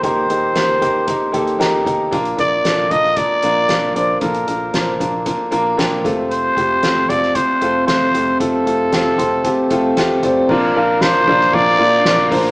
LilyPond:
<<
  \new Staff \with { instrumentName = "Trumpet" } { \time 4/4 \key bes \major \tempo 4 = 115 c''2. r4 | r8 d''4 ees''8 d''4. d''8 | bes'4. r2 r8 | c''4. d''8 c''4 c''4 |
a'2. r4 | bes'4 c''4 d''4. r8 | }
  \new Staff \with { instrumentName = "Upright piano" } { \time 4/4 \key bes \major << { r2. bes''4 | r1 | r2. g''8 f''8 | r1 |
r4. c'''8 a''8 g''8 f''8 d''8 | r1 | } \\ { <bes ees' g' bes'>8 <bes ees' g' bes'>8 <bes ees' g' c''>8 <bes ees' g' bes'>8 <bes ees' g' bes'>8 <bes ees' g' a'>8 <bes ees' g' bes'>8 <bes ees' g' bes'>8 | <bes d' f' bes'>8 <bes d' f' bes'>8 <bes d' f' a'>8 <bes d' f' bes'>8 <bes d' f' bes'>8 <bes d' f' bes'>8 <bes d' f' bes'>8 <bes d' f' c''>8 | <bes d' f' a'>8 <bes d' f' bes'>8 <bes d' f' c''>8 <bes d' f' bes'>8 <bes d' f' bes'>8 <bes d' f' bes'>8 <bes d' f' bes'>8 <a c' f' a'>8~ | <a c' f' a'>8 <a c' f' g'>8 <a c' f' a'>8 <a c' f' a'>8 <a c' f' c''>8 <a c' f' a'>8 <a c' f' c''>8 <a c' f' a'>8 |
<a c' f' a'>8 <a c' f' a'>8 <a c' f' g'>8 <a c' f' a'>8 <a c' f' g'>8 <a c' f' a'>8 <a c' f' g'>8 <a c' f' c''>8 | <bes d' f' bes' d''>8 <bes d' f' bes' f''>8 <bes d' f' bes' d''>8 <bes d' f' bes' d''>8 <bes d' f' bes' d''>8 <bes d' f' bes' d''>8 <bes d' f' bes' d''>8 <bes d' f' bes' c''>8 | } >> }
  \new Staff \with { instrumentName = "Upright piano" } { \clef bass \time 4/4 \key bes \major bes,4 r2. | r1 | r2. r8 c8~ | c4 r2 r8 c8~ |
c4 r2. | <bes, f>4. r2 r8 | }
  \new Staff \with { instrumentName = "String section" } { \clef bass \time 4/4 \key bes \major r1 | r1 | r1 | r1 |
r1 | <d f bes f'>1 | }
  \new Staff \with { instrumentName = "Fingered electric bass" } { \clef bass \time 4/4 \key bes \major ees,8 ees,8 ees,8 ees,8. r16 ees,8 ees,8 ees,8 | bes,,8 bes,,8 bes,,8 bes,,8. r16 bes,,8 bes,,8 bes,,8 | bes,,8 bes,,8 bes,,8 bes,,8. r16 bes,,8 bes,,8 f,,8~ | f,,8 f,,8 f,,8 f,,8. r16 f,,8 f,,8 f,,8 |
f,,8 f,,8 f,,8 f,,8. r16 f,,8 f,,8 f,,8 | bes,,8 bes,,8. r16 bes,,8 bes,,8 bes,8 bes,,8 a,,8 | }
  \new DrumStaff \with { instrumentName = "Drums" } \drummode { \time 4/4 <hh bd>8 hh8 <hh sn>8 <hh bd>8 <hh bd>8 <hh bd>16 hh16 <hh sn>8 <hh bd>8 | <hh bd>16 hh16 <hh bd>8 <hh sn>8 <hh bd>16 sn16 <hh bd>8 hh8 <hh sn>8 hh8 | <hh bd>16 hh16 hh8 <hh sn>8 <hh bd>8 <hh bd>8 hh8 <hh sn>8 <hh bd>8 | hh8 <hh bd>8 <hh sn>8 <hh bd>16 sn16 <hh bd>8 hh8 <hh sn>8 hh8 |
<hh bd>8 hh8 <hh sn>8 <hh bd>8 <hh bd>8 <hh bd>8 <hh sn>8 <hh bd>8 | <cymc bd>8 cymr8 <cymr sn>8 <bd cymr>16 sn16 <bd cymr>8 cymr8 <cymr sn>8 <hho bd cymr>8 | }
>>